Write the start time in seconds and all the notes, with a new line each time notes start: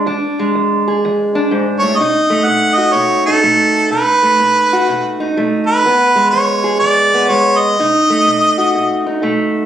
0.06 E2 D4
0.39 G#3
0.55 E2
0.88 G#4
1.05 E2
1.35 D4
1.51 G#2
1.79 A2 C#5
1.97 B2 D#5
2.01 D#4
2.30 A3
2.45 B2 F#5
2.75 F#4 D#5
2.93 B2 C#5
3.26 D#4 A4
3.43 B2 A3
3.91 B2 D#4 B4
4.23 A3
4.40 B2
4.73 F#4
4.89 B2
5.20 D#4
5.37 B2 A3
5.67 B4
5.85 E2 B3
6.16 G#3
6.30 E2 C#5
6.64 G#4
6.79 E2 D5
7.14 B3
7.29 E2 G#3 C#5
7.58 D#5
7.79 B2 D#4
8.10 A3
8.27 B2
8.58 F#4
8.75 B2
9.06 D#4
9.22 B2 A3